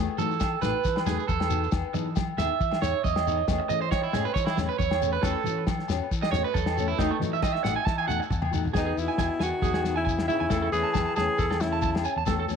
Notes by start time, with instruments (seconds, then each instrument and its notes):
Already playing: steel-string acoustic guitar E3 A3 D#4
0.00 steel-string acoustic guitar F#4
0.18 fingered electric bass E3, steel-string acoustic guitar A3 D#4 F#4, clean electric guitar A4, muted conga, high conga, shekere
0.31 shekere
0.40 kick, snare, high conga, low agogo, shekere
0.62 fingered electric bass A1, steel-string acoustic guitar A3 D#4 F#4, clean electric guitar B4, snare, low conga, low agogo, shekere
0.84 fingered electric bass E3, kick, snare, muted conga, shekere
0.96 snare, low agogo
1.06 fingered electric bass E2, steel-string acoustic guitar A3 D#4 F#4, clean electric guitar G#4, snare, high conga, shekere
1.19 shekere
1.28 fingered electric bass E2, clean electric guitar A4, kick, high conga, shekere
1.40 snare, low agogo
1.49 steel-string acoustic guitar D#4 F#4, muted steel-string acoustic guitar stroke, muted conga, low conga, shekere
1.63 shekere
1.72 fingered electric bass E2, steel-string acoustic guitar D#3 B3 D#4 G#4, kick, snare, low agogo, shekere
1.94 fingered electric bass E3, steel-string acoustic guitar B3 D#4 G#4, muted clean electric guitar stroke, muted conga, high conga, shekere
2.16 kick, snare, high conga, low agogo, shekere
2.37 fingered electric bass D#2, steel-string acoustic guitar D#4 G#4, clean electric guitar E5, snare, low agogo, shekere
2.41 steel-string acoustic guitar B3
2.60 fingered electric bass E3, kick, muted conga, shekere
2.71 snare, low agogo
2.82 fingered electric bass E2, steel-string acoustic guitar D#4 G#4, clean electric guitar C#5, snare, shekere
3.04 fingered electric bass E2, clean electric guitar D#5, kick, high conga, shekere
3.16 snare, low agogo
3.26 steel-string acoustic guitar B3 D#4 G#4, muted conga, shekere
3.48 fingered electric bass E2, steel-string acoustic guitar E3 A3 C#4 G#4, kick, snare, low agogo, shekere
3.60 muted clean electric guitar stroke
3.69 fingered electric bass E3, steel-string acoustic guitar A3 C#4 G#4, clean electric guitar D#5, muted conga, shekere
3.82 clean electric guitar C5
3.91 clean electric guitar C#5, kick, snare, high conga, low agogo, shekere
4.03 clean electric guitar E4
4.13 fingered electric bass G#2, steel-string acoustic guitar A3 C#4 G#4, clean electric guitar G#4, snare, low conga, low agogo, shekere
4.25 clean electric guitar B4
4.34 fingered electric bass E3, clean electric guitar C#5, kick, snare, muted conga, shekere
4.46 clean electric guitar E4, snare, low agogo
4.57 fingered electric bass E2, steel-string acoustic guitar A3 C#4 G#4, snare, high conga, shekere
4.69 clean electric guitar B4
4.79 fingered electric bass E2, clean electric guitar C#5, kick, high conga, shekere
4.91 snare, low agogo
5.02 steel-string acoustic guitar A3 C#4 G#4, muted conga, low conga, shekere
5.13 clean electric guitar B4
5.23 fingered electric bass E2, steel-string acoustic guitar E3 A3 C#4 F#4, clean electric guitar A4, kick, snare, muted conga, low agogo, shekere
5.44 fingered electric bass E3, steel-string acoustic guitar C#4 F#4, muted conga, high conga, shekere
5.48 muted steel-string acoustic guitar stroke
5.67 kick, snare, high conga, low agogo, shekere
5.79 snare
5.88 fingered electric bass E2, steel-string acoustic guitar C#4 F#4, muted steel-string acoustic guitar stroke, snare, low agogo, shekere
6.11 fingered electric bass E3, kick, muted conga, shekere
6.22 clean electric guitar D#5, snare, low agogo
6.31 fingered electric bass E2, steel-string acoustic guitar C#4 F#4, clean electric guitar C#5, snare, shekere
6.36 steel-string acoustic guitar A3
6.44 clean electric guitar B4
6.54 fingered electric bass E2, clean electric guitar A4, kick, high conga, shekere
6.66 snare, low agogo
6.77 steel-string acoustic guitar A3 C#4 F#4, shekere
6.88 clean electric guitar E4
6.98 fingered electric bass E2, steel-string acoustic guitar E3 A3 D#4 F#4, clean electric guitar D#4, kick, snare, low agogo, shekere
7.11 clean electric guitar A3
7.20 fingered electric bass E3, steel-string acoustic guitar A3 D#4 F#4, snare, muted conga, high conga, shekere
7.33 clean electric guitar E5, shekere
7.42 clean electric guitar D#5, kick, snare, high conga, low agogo, shekere
7.54 clean electric guitar E5, snare
7.64 fingered electric bass A1, steel-string acoustic guitar A3 D#4 F#4, clean electric guitar F#5, snare, low conga, low agogo, shekere
7.76 clean electric guitar G#5
7.86 fingered electric bass E3, clean electric guitar A5, kick, snare, shekere
7.98 clean electric guitar G#5, low agogo
8.07 fingered electric bass E2, steel-string acoustic guitar A3 D#4 F#4, clean electric guitar F#5, high tom, high conga, shekere
8.20 muted clean electric guitar stroke, shekere
8.30 fingered electric bass E2, kick, mid tom, high conga, shekere
8.42 mid tom, low agogo
8.51 steel-string acoustic guitar A3 D#4 F#4, floor tom, muted conga, low conga, shekere
8.65 floor tom, shekere
8.73 fingered electric bass E2, steel-string acoustic guitar E3 B3 D#4 G#4, alto saxophone D#4, clean electric guitar G#4, kick, snare, low agogo, shekere
8.78 trombone B2
8.86 clean electric guitar G#4
8.96 fingered electric bass E2, trombone B2, steel-string acoustic guitar B3 D#4, alto saxophone E4, muted conga, shekere
9.08 clean electric guitar G#5
9.18 fingered electric bass E2, clean electric guitar G#5, kick, snare, high conga, low agogo, shekere
9.39 fingered electric bass E2, trombone D#3, steel-string acoustic guitar B3 D#4 G#4, alto saxophone F#4, clean electric guitar G#5, snare, low agogo, shekere
9.62 fingered electric bass E2, clean electric guitar G#4, kick, snare, muted conga, high conga, shekere
9.74 clean electric guitar G#4, snare, low agogo
9.83 steel-string acoustic guitar B3 D#4 G#4, snare, shekere
9.96 trombone C#3, alto saxophone E4, clean electric guitar G#5
10.05 clean electric guitar G#5, kick, shekere
10.18 snare, low agogo
10.28 trombone C#3, steel-string acoustic guitar B3 D#4 G#4, alto saxophone E4, clean electric guitar E5, muted conga, high conga, shekere
10.40 fingered electric bass E2, clean electric guitar G#5
10.50 fingered electric bass E2, steel-string acoustic guitar E3 A3 C#4 G#4, clean electric guitar A4, kick, snare, low agogo, shekere
10.62 clean electric guitar A4
10.72 fingered electric bass E2, trombone E3, steel-string acoustic guitar C#4 G#4, alto saxophone G#4, snare, muted conga, shekere
10.83 clean electric guitar A5
10.94 fingered electric bass E2, clean electric guitar A5, kick, snare, high conga, low agogo, shekere
11.06 clean electric guitar A5
11.16 fingered electric bass E2, trombone E3, steel-string acoustic guitar A3 C#4 G#4, alto saxophone G#4, clean electric guitar A5, snare, low conga, low agogo, shekere
11.38 fingered electric bass E2, clean electric guitar A4, kick, snare, muted conga, shekere
11.50 clean electric guitar A4, snare, low agogo
11.60 trombone C#3, steel-string acoustic guitar A3 C#4, alto saxophone E4, snare, low conga, shekere
11.73 clean electric guitar A5
11.82 clean electric guitar A5, kick, high conga, shekere
11.95 snare, low agogo
12.03 steel-string acoustic guitar C#4 G#4, clean electric guitar G#5, shekere
12.16 fingered electric bass E2, clean electric guitar A5
12.26 fingered electric bass E2, steel-string acoustic guitar E3 A3 C#4 F#4, clean electric guitar A4, kick, snare, low agogo, shekere
12.40 clean electric guitar A4
12.48 fingered electric bass E2, steel-string acoustic guitar A3 C#4 F#4, snare, muted conga, shekere